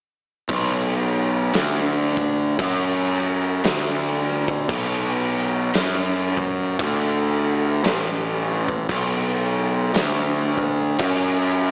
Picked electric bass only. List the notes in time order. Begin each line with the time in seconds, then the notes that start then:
0.49 B1
1.54 D2
2.59 F#2
3.65 D2
4.69 B1
5.75 F#2
6.79 D2
7.84 A1
8.89 B1
9.94 D2
10.99 F#2